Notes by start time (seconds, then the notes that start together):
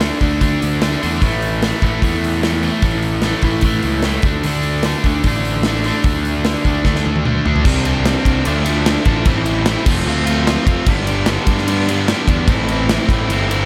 Already playing: D2
0.00 D3 A3 D4, snare, open hi-hat
0.21 D2 D3 A3 D4, kick, open hi-hat
0.41 D2 D3 A3 D4, kick, open hi-hat
0.62 D2, open hi-hat
0.82 D3 A3 D4, snare, open hi-hat
1.02 E2 D3 A3 D4, open hi-hat
1.22 A1 A2 E3 A3, kick, open hi-hat
1.42 open hi-hat
1.62 A2 E3 A3, snare, open hi-hat
1.82 A1 A2 E3 A3, kick, open hi-hat
2.02 E2 A2 E3 A3, kick, open hi-hat
2.24 open hi-hat
2.43 A2 E3 A3, snare, open hi-hat
2.63 A2 E3 A3, open hi-hat
2.82 A1 A2 E3 A3, kick, open hi-hat
3.03 open hi-hat
3.22 A2 E3 A3, snare, open hi-hat
3.42 A1 A2 E3 A3, kick, open hi-hat
3.61 A1 A2 E3, kick, open hi-hat
3.65 A3
3.83 C#2, open hi-hat
4.02 A2 E3 A3, snare, open hi-hat
4.22 D2 D3 A3, kick, open hi-hat
4.27 D4
4.43 D2 D3 A3 D4, open hi-hat
4.63 open hi-hat
4.83 D3 A3, snare, open hi-hat
4.87 D4
5.04 D2 D3 A3 D4, kick, open hi-hat
5.24 A1 D3 A3, kick, open hi-hat
5.28 D4
5.45 open hi-hat
5.63 D3 A3 D4, snare, open hi-hat
5.84 D3 A3 D4, open hi-hat
6.04 D2 D3 A3 D4, kick, open hi-hat
6.25 open hi-hat
6.45 D3 A3 D4, snare, open hi-hat
6.65 D2 D3 A3 D4, kick, open hi-hat
6.85 D2 D3 A3 D4, kick, snare
6.95 snare
7.06 D2
7.16 high tom
7.25 D3 A3 D4, mid tom
7.45 D2 D3 A3 D4, floor tom
7.56 floor tom
7.65 C2 C3 G3 C4 D4, kick, crash
7.84 C4 D4, ride
7.88 G3
8.05 C3 G3 C4 D4, snare, ride
8.25 C2 G3 C4 D4, kick, ride
8.45 D2 D3 F3 A3 D4, ride
8.65 D3 F3 A3 D4, ride
8.86 D3 F3 A3 D4, snare, ride
9.05 A1 F3 A3 D4, kick, ride
9.25 A1 A2 E3 A3 C4 E4, kick, ride
9.45 A3 C4 E4, ride
9.65 A2 E3 A3 C4 E4, snare, ride
9.86 F1 F3 A3 C4 F4, kick, crash
10.06 D2 F3 A3 C4 F4
10.26 A3 C4 F4, ride
10.30 F3
10.47 F3 A3 C4 F4, snare, ride
10.67 F1 C4 F4, kick, ride
10.71 A3
10.86 G1 G2 D3 G3 B3 D4, kick, ride
11.07 G3 B3 D4, ride
11.26 G2 D3 G3 B3, snare, ride
11.30 D4
11.47 G2 B3 D4, kick, ride
11.52 G3
11.58 snare
11.67 D3 G3 B3 D4, ride
11.88 G2 D3 G3 B3 D4, ride
12.08 D3 G3 B3, snare, ride
12.13 D4
12.28 E2 B3 D4, kick, ride
12.32 G3
12.48 A1 A2 E3 A3 C4 E4, kick, ride
12.68 A3 C4 E4, ride
12.89 A2 E3 A3 C4 E4, snare, ride
13.08 A1 A3 C4 E4, kick, ride
13.29 G1 E3 A3 C4, ride
13.33 E4
13.49 A2 E3 A3 C4 E4, ride